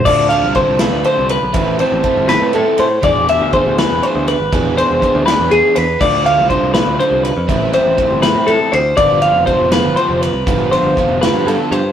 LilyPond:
<<
  \new Staff \with { instrumentName = "Clean electric guitar" } { \time 6/8 \key a \minor \tempo 4. = 81 d''8 f''8 c''8 b'8 c''8 b'8~ | b'8 c''4 b'8 a'8 c''8 | d''8 e''8 c''8 b'8 c''8 b'8~ | b'8 c''4 b'8 gis'8 b'8 |
d''8 f''8 c''8 b'8 c''8 b'8~ | b'8 c''4 b'8 a'8 c''8 | d''8 f''8 c''8 b'8 c''8 b'8~ | b'8 c''4 b'8 a'8 c''8 | }
  \new Staff \with { instrumentName = "Clean electric guitar" } { \time 6/8 \key a \minor <d c' a'>2. | r2. | r2. | r2. |
r2. | r2. | r2. | r2. | }
  \new Staff \with { instrumentName = "Overdriven electric guitar" } { \time 6/8 \key a \minor <a d' f' a'>8 <a d' f' a'>8 <a d' f' a'>8 <a d' f' a'>8 <a d' f' a'>8 r8 | <a c' e' a'>8 <a c' e' a'>8 <a c' e' a'>8 <a c' e' a'>8 <a c' e' a'>8 r8 | <e b d' gis'>8 <e b d' gis'>8 <e b d' gis'>8 <e b d' gis'>8 <e b d' gis'>8 r8 | <e b d' gis'>8 <e b d' gis'>8 <e b d' gis'>8 <e b d' gis'>8 <e b d' gis'>8 r8 |
<d a d' f'>8 <d a d' f'>8 <d a d' f'>8 <d a d' f'>8 <d a d' f'>8 r8 | <e a c' e'>8 <e a c' e'>8 <e a c' e'>8 <e a c' e'>8 <e a c' e'>8 r8 | <d f b f'>8 <d f b f'>8 <d f b f'>8 <d f b f'>8 <d f b f'>8 r8 | <d f b f'>8 <d f b f'>8 <d f b f'>8 <d f b f'>8 <d f b f'>8 r8 | }
  \new Staff \with { instrumentName = "Picked electric bass" } { \clef bass \time 6/8 \key a \minor d,8. c,8 c,8 d,16 r16 c,8 b,,16 | a,,8. a,,16 r16 g,,8 a,16 a,16 r16 a,8 | e,,8. d,8 d,8 e,,16 r16 d,8 gis,,16 | e,,8. e,,16 r16 d,8 e,16 e,16 r16 e,8 |
d,8. c,8 c,8 d,16 r16 c,8 f,16 | a,,8. a,,16 r16 g,,8 a,16 a,16 r16 d,8 | g,,8. f,,8 f,,8 g,,16 r16 f,,8 c,16 | g,,8. g,,16 r16 f,,8 g,16 g,16 r16 g,8 | }
  \new DrumStaff \with { instrumentName = "Drums" } \drummode { \time 6/8 <cymc bd>8 cymr8 <bd cymr>8 <cymr sn>8 cymr8 cymr8 | <bd cymr>8 cymr8 <bd cymr>8 <cymr sn>8 cymr8 cymr8 | <bd cymr>8 cymr8 <bd cymr>8 <cymr sn>8 cymr8 cymr8 | <bd cymr>8 cymr8 <bd cymr>8 <cymr sn>8 cymr8 cymr8 |
<cymc bd>8 cymr8 <bd cymr>8 <cymr sn>8 cymr8 cymr8 | <bd cymr>8 cymr8 <bd cymr>8 <cymr sn>8 cymr8 cymr8 | <bd cymr>8 cymr8 <bd cymr>8 <cymr sn>8 cymr8 cymr8 | <bd cymr>8 cymr8 <bd cymr>8 <cymr sn>8 cymr8 cymr8 | }
>>